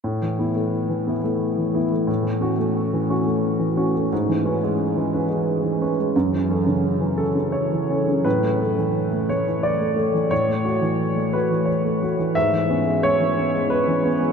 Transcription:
X:1
M:3/4
L:1/16
Q:1/4=88
K:F#m
V:1 name="Grand piano"
z12 | z12 | z12 | z6 A2 c4 |
B6 c2 d4 | c6 B2 c4 | e4 c4 B4 |]
V:2 name="Grand piano"
A,, E, [B,E] A,2 E, [B,E] A,2 E, [B,E] A, | A,, E, [CF] A,2 E, [CF] A,2 E, [CF] A, | G,, E, [CB] G,2 E, [CB] G,2 E, [CB] G, | F,, E, [CA] C,2 E, C C,2 E, [CA] C, |
A,, A, [A,A] E,2 A, [A,A] E,2 A, [A,A] E, | A,, A, [A,F] E,2 A, [A,F] E,2 A, [A,F] E, | G,, E, [B,C] G,2 E, [B,C] G,2 E, [B,C] G, |]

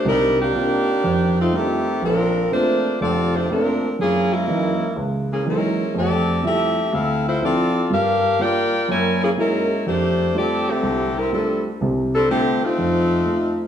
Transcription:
X:1
M:4/4
L:1/8
Q:"Swing" 1/4=123
K:F
V:1 name="Saxophone section"
[G,D_EB] [_E,B,DG]4 [A,CEF] [E,A,CG]2 | [F,CDB]2 [A,DFc]2 [CFAd] [A,DFc] [F,CDB]2 | [_F,B,_D_A] [_A,B,D_F]3 z [F,B,DA] [A,DFB]2 | [CGAd]2 [CGAe]2 [CEAf] [A,EFc] [CFAd]2 |
[DGBf]2 [FBdg]2 [_FB_d_a] [_F,B,_D_A] [_A,DFB]2 | [A,DGc]2 [CGAd] [D,A,CG]2 [G,CEB] [G,CDA] z | z [G,CDA] [D,A,CG] [A,C_EF]4 z |]
V:2 name="Grand piano"
[C,,C,]2 [B,CD_EF] z F,,2 [G,A,DEF] z | B,,,2 [A,B,CD] z F,,,2 [A,B,CD] z | _G,,2 [_F,_G,_A,B,_E] z _D,,2 [F,G,A,B,E] z | [F,,A,]2 [F,G,A,E] z D,,2 [F,CDE] z |
[G,,G,]2 [G,B,F] z [_G,,B,]2 [_A,B,_E_F_G] z | F,,2 [G,A,DF] z C,,2 [G,A,DF] z | [C,,C,]2 [G,A,DF] z F,,2 [A,_EF] z |]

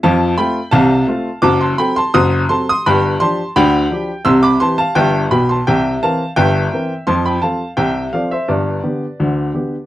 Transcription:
X:1
M:2/4
L:1/16
Q:1/4=85
K:C
V:1 name="Upright piano"
[fa]2 [gb]2 [fa]4 | [ad'] [ac'] [gb] [ac'] [c'_e']2 [ac'] [c'e'] | [gb]2 [ac']2 [gb]4 | [c'e'] [bd'] [ac'] [fa] [eg]2 [gb] [ac'] |
[eg]2 [fa]2 [eg]4 | [ac'] [gb] [fa]2 [eg]2 [df] [ce] | [Bd]8 |]
V:2 name="Upright piano" clef=bass
[F,,F,]2 [A,CF]2 [C,,C,]2 [A,CF]2 | [^F,,,^F,,]2 [^F,CA]2 [F,,,F,,]2 [F,CA]2 | [G,,,G,,]2 [F,DG]2 [D,,D,]2 [F,DG]2 | [C,,C,]2 [E,CG]2 [G,,,G,,]2 [B,,,B,,]2 |
[C,,C,]2 [E,C_B]2 [G,,,G,,]2 [E,CB]2 | [F,,F,]2 [F,CA]2 [C,,C,]2 [F,CA]2 | [G,,,G,,]2 [D,B,G]2 [D,,D,]2 [D,B,G]2 |]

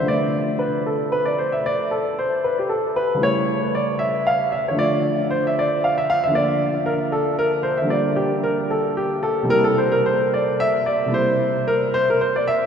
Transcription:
X:1
M:12/8
L:1/16
Q:3/8=76
K:Ddor
V:1 name="Grand piano"
d4 B2 A2 B d c e d2 A2 c2 B G A2 B2 | ^c4 d2 e2 f2 e c d4 =c e d2 f e f e | [K:Cmix] d4 B2 A2 B2 c e d2 G2 B2 A2 G2 A2 | B A c B c2 d2 e2 d2 c4 B2 c B c d e2 |]
V:2 name="Grand piano" clef=bass
[D,F,A,F]24 | [^C,G,A,E]12 [D,F,A,F]12 | [K:Cmix] [D,F,B,F]12 [D,G,B,F]12 | [C,G,B,E]12 [C,G,B,E]12 |]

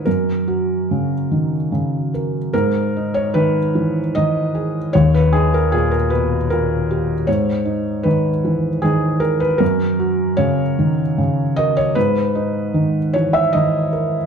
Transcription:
X:1
M:3/4
L:1/16
Q:1/4=76
K:G#m
V:1 name="Felt piano"
A8- A2 z2 | A3 c B4 d4 | c B G A G A B2 A4 | c4 B4 G2 A B |
A4 c6 d c | B6 c e d4 |]
V:2 name="Felt piano" clef=bass
F,,2 F2 C,2 D,2 C,2 A2 | G,,2 D2 D,2 E,2 D,2 G2 | D,,2 D2 A,,2 B,,2 A,,2 =G2 | G,,2 D2 D,2 E,2 D,2 G2 |
F,,2 F2 C,2 D,2 C,2 A2 | G,,2 D2 D,2 E,2 D,2 A2 |]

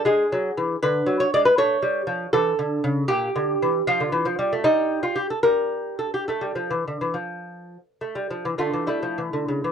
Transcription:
X:1
M:12/8
L:1/16
Q:3/8=77
K:Aphr
V:1 name="Lute"
^G6 =B3 ^c d B c6 A6 | G6 F6 _E3 F G A B4 A G | A16 [A,F]2 [A,E]6 |]
V:2 name="Lute" clef=bass
^G,2 ^F,2 E,2 D,2 F,2 G,2 A,2 =G,2 =F,2 E,2 D,2 ^C,2 | B,,2 D,2 E,2 F, D, E, F, G, A, G,6 G,6 | A, G, F, E, D, E, F,6 A, G, F, E, D, E, G, F, E, D, ^C, E, |]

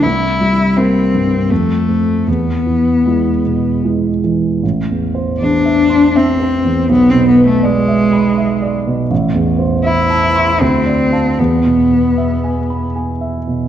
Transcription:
X:1
M:3/4
L:1/16
Q:1/4=78
K:Am
V:1 name="Grand piano"
C,,2 G,2 [_B,C]2 G,,2 F,,2 [A,C]2 | E,,2 E,2 [^G,E]2 B,,2 [G,E]2 E,2 | (3A,,,2 E,,2 c2 (3E,,2 e2 c'2 (3e2 c2 E,,2 | (3B,,,2 B,,2 B2 (3d2 e2 b2 (3e2 d2 B,,2 |
(3A,,,2 E,,2 c2 (3e2 a2 c'2 (3D,,2 d2 [fa]2 | (3E,,2 B,,2 B2 (3e2 ^g2 b2 (3g2 e2 B,,2 |]
V:2 name="Cello"
E4 C4 A,4 | B,8 z4 | z4 D4 C4 | B, C B, A, ^G,6 z2 |
z4 E4 C4 | B,8 z4 |]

